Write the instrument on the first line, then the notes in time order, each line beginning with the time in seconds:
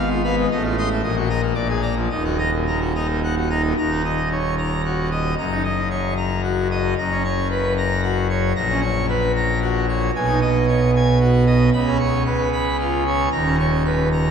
pipe organ
Already playing: G#1 G#2
0.10 F4
0.24 B3 F5 B5
0.39 G#3
0.51 A1 A2 D#5
0.64 F4
0.78 D#5 C6
0.91 A3
1.03 A#1 A#2 D#5
1.17 F#4
1.30 D#5 A#5
1.42 A#3
1.55 A#1 A#2 D5
1.69 G#4
1.82 D5 A#5
1.95 F3
2.10 D#1 D#2 D#5
2.24 F#4
2.38 D#5 A#5
2.54 A#2
2.68 A#2 A#5
2.81 F#4
2.95 D#4 D#5 A#5
3.09 A#2
3.23 F#5
3.37 F#4
3.50 D#4 D#5 A#5
3.65 A#2
3.78 D#1 D#2 A#5
3.91 D#4
4.05 D#5
4.32 C#5
4.58 A#5
4.85 F#4
5.12 D#5
5.38 F#1 F#2 A#5
5.52 D#4
5.64 D#5
5.90 C#5
6.17 A#5
6.43 F#4
6.71 D#5
6.98 F#1 F#2 A#5
7.11 C#4
7.24 C#5
7.50 B4
7.78 A#5
8.03 F#4
8.30 C#5
8.56 A#1 A#2 A#5
8.70 C#4
8.82 C#5
9.09 B4
9.36 A#5
9.62 F#4
9.88 C#5
10.15 B1 B2 G#5
10.28 D#4
10.41 D#5
10.68 C#5
10.96 G#5
11.21 F#4
11.47 D#5
11.73 C#2 C#3 B5
11.86 C#4
11.99 C#5
12.26 B4
12.53 B5
12.80 F4
13.07 C#5
13.32 D#1 D#2 A#5
13.45 C#4
13.59 C#5
13.85 B4
14.12 A#5